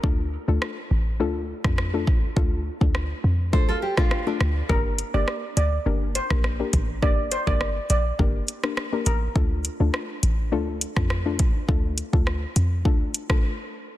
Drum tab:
HH |----------------|----------------|--x---x---x---x-|--x---x---x---x-|
SD |----r------rr---|----r------rr-r-|----r------rr---|----r------rr---|
BD |o----------o--o-|o--o----o--o----|o----------o--o-|o--o----o-------|

HH |--x---x---x---x-|--x---x---x-----|
SD |----r------rr---|----r------r----|
BD |o----------o--o-|o--o----o--o----|